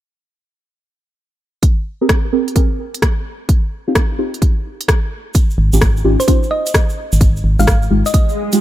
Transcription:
1.63 kick, closed hi-hat
2.01 synth stab C4 G4 G#4 A#4
2.09 kick, cross-stick, closed hi-hat
2.33 synth stab C4 G4 G#4 A#4
2.48 closed hi-hat
2.56 synth stab C4 G4 G#4 A#4, kick, closed hi-hat
2.94 closed hi-hat
3.02 kick, cross-stick, closed hi-hat
3.49 kick, closed hi-hat
3.88 synth stab C4 D#4 F4 G4
3.95 kick, cross-stick, closed hi-hat
4.19 synth stab C4 D#4 F4 G4
4.34 closed hi-hat
4.42 kick, closed hi-hat
4.81 closed hi-hat
4.88 kick, cross-stick, closed hi-hat
5.34 kick, closed hi-hat, shaker
5.50 shaker
5.58 fm bass G#1
5.73 fm bass G#1, synth stab C#4 D#4 F4 G4, shaker
5.81 kick, cross-stick, closed hi-hat
5.97 shaker
6.05 fm bass G#1, synth stab C#4 D#4 F4 G4
6.20 synth pluck C5, closed hi-hat, shaker
6.28 synth stab C#4 D#4 F4 G4, synth pluck C5, kick, closed hi-hat, shaker
6.43 shaker
6.51 synth pluck D#5
6.66 closed hi-hat, shaker
6.74 kick, cross-stick, closed hi-hat, shaker
6.90 shaker
7.12 fm bass G#1, shaker
7.21 kick, closed hi-hat, shaker
7.36 shaker
7.44 fm bass G#1
7.59 fm bass G#1, synth stab G#3 D#4 F4 G4, synth pluck F5, shaker
7.67 synth pluck F5, kick, cross-stick, closed hi-hat, shaker
7.82 shaker
7.91 fm bass G#1, synth stab G#3 D#4 F4 G4
8.06 synth pluck D#5, closed hi-hat, shaker
8.14 synth pluck D#5, kick, closed hi-hat, swell, shaker
8.29 shaker
8.52 synth stab G#3 D#4 F4 G4, closed hi-hat, shaker

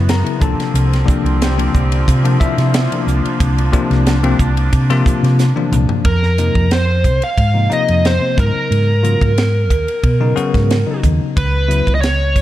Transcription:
Already playing: fingered electric bass F#2, tine electric piano C#3 F#3 B3 E4, string section E3 G#3 B3 F#4
0.09 tine electric piano A#4 A#5, snare, hi-hat pedal, ride
0.24 tine electric piano C#3 F#3 B3 E4, ride
0.40 fingered electric bass C2, tine electric piano C3 F3 A#3 D4 A4 A5, string section D3 F3 A#3 C4, kick, hi-hat pedal
0.58 muted fingered electric bass stroke, snare, ride
0.74 fingered electric bass C2, hi-hat pedal, ride
0.93 snare, ride
1.05 tine electric piano C3 F3 A#3 D4, kick, hi-hat pedal
1.24 fingered electric bass C2, ride
1.42 tine electric piano G4 C5 D5 G5, snare, hi-hat pedal, ride
1.58 tine electric piano C3 F3 A#3 D4, ride
1.73 fingered electric bass C2, tine electric piano A#3 E4, kick, hi-hat pedal
1.91 tine electric piano A#3 E4, ride
2.08 fingered electric bass C3, kick, hi-hat pedal, ride
2.23 tine electric piano C3 F3 A#3 D4, ride
2.40 tine electric piano E4 E5, kick, hi-hat pedal
2.58 fingered electric bass C3, snare, ride
2.74 snare, hi-hat pedal, ride
2.92 tine electric piano C3 F3 A#3 D4, ride
3.07 fingered electric bass C2, string section D4, hi-hat pedal
3.25 muted fingered electric bass stroke, ride
3.40 fingered electric bass C2, kick, hi-hat pedal, ride
3.58 ride
3.72 tine electric piano C3 F3 A#3 D4, kick, hi-hat pedal
3.90 fingered electric bass C2, snare, ride
4.07 snare, hi-hat pedal, ride
4.23 tine electric piano C3 F3 A#3 C4, ride
4.39 fingered electric bass C2, tine electric piano A#3 D4, kick, hi-hat pedal
4.56 tine electric piano A#3 C4, ride
4.72 fingered electric bass C3, kick, hi-hat pedal, ride
4.90 tine electric piano C3 F3 A#3 F4, snare, ride
5.06 kick, hi-hat pedal
5.23 fingered electric bass C3, snare, ride
5.39 snare, hi-hat pedal
5.55 tine electric piano C3 F3 A#3 D4, high tom
5.72 fingered electric bass C2, hi-hat pedal, mid tom
5.89 floor tom
6.05 fingered electric bass F2, lead electric guitar A#4, kick, ride
6.23 snare
6.38 tine electric piano C3 F3 A#3 D#4, hi-hat pedal, ride
6.55 fingered electric bass F2, kick, ride
6.71 lead electric guitar C5, snare, ride
7.04 fingered electric bass C2, kick, hi-hat pedal, ride
7.22 lead electric guitar F5, ride
7.38 fingered electric bass G#2, kick, ride
7.54 tine electric piano C3 F3 A#3 D#4
7.70 tine electric piano C3 F3 A#3 D#4, lead electric guitar D#5, muted fingered electric bass stroke, hi-hat pedal, ride
7.88 fingered electric bass F2, ride
8.05 lead electric guitar C5, snare, ride
8.20 tine electric piano C3 F3 A#3 C4
8.36 fingered electric bass G#2, tine electric piano C#3 F#3 B3 D#4, lead electric guitar A#4, kick, hi-hat pedal, ride
8.55 muted fingered electric bass stroke
8.71 fingered electric bass G#2, ride
9.03 tine electric piano C#3 F#3 B3 F4, hi-hat pedal, ride
9.21 fingered electric bass G#2, kick, ride
9.36 tine electric piano B3 D#4, snare, ride
9.70 fingered electric bass D#2, kick, hi-hat pedal, ride
9.88 ride
10.03 fingered electric bass B2, kick, ride
10.20 tine electric piano C#3 F#3 B3 D#4
10.36 tine electric piano C#3 F#3 B3 F#4, muted fingered electric bass stroke, hi-hat pedal, ride
10.54 fingered electric bass G#2, kick, snare, ride
10.71 snare, ride
10.86 tine electric piano C#3 F#3 B3 D#4
11.03 fingered electric bass D#2, kick, hi-hat pedal, ride
11.21 muted fingered electric bass stroke
11.37 fingered electric bass C#2, lead electric guitar B4, kick, ride
11.68 tine electric piano C#3 F#3 B3 E4, hi-hat pedal, ride
11.87 fingered electric bass C#2, kick, ride
11.95 lead electric guitar D#5
12.01 tine electric piano B3, lead electric guitar C#5, snare, ride
12.36 fingered electric bass G#1, kick, hi-hat pedal, ride

